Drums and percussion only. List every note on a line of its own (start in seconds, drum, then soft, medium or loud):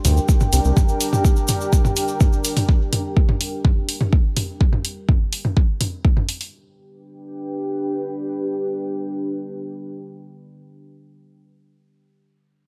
0.05 mid tom medium
0.05 open hi-hat loud
0.05 cabasa medium
0.17 cabasa soft
0.29 kick loud
0.29 cabasa medium
0.40 mid tom medium
0.40 cabasa soft
0.53 open hi-hat loud
0.53 cabasa medium
0.65 cabasa soft
0.77 kick loud
0.77 mid tom medium
0.77 cabasa medium
0.88 cabasa soft
1.01 open hi-hat loud
1.01 cabasa medium
1.13 mid tom medium
1.13 cabasa soft
1.25 kick loud
1.25 cabasa medium
1.36 cabasa soft
1.48 mid tom medium
1.48 open hi-hat loud
1.48 cabasa medium
1.61 cabasa soft
1.73 kick loud
1.73 cabasa medium
1.85 mid tom medium
1.85 cabasa soft
1.96 open hi-hat loud
1.96 cabasa medium
2.08 cabasa soft
2.20 kick loud
2.20 mid tom medium
2.20 cabasa soft
2.33 cabasa soft
2.44 open hi-hat loud
2.44 cabasa medium
2.57 mid tom medium
2.57 open hi-hat medium
2.57 cabasa soft
2.69 kick loud
2.93 mid tom medium
2.93 open hi-hat loud
3.17 kick loud
3.29 mid tom medium
3.41 open hi-hat loud
3.65 kick loud
3.65 mid tom medium
3.89 open hi-hat loud
4.01 mid tom medium
4.13 kick loud
4.37 mid tom medium
4.37 open hi-hat loud
4.61 kick loud
4.73 mid tom medium
4.85 open hi-hat medium
5.09 kick loud
5.09 mid tom medium
5.33 open hi-hat loud
5.45 mid tom medium
5.57 kick loud
5.81 mid tom medium
5.81 open hi-hat loud
6.05 kick loud
6.17 mid tom medium
6.29 open hi-hat medium
6.41 open hi-hat medium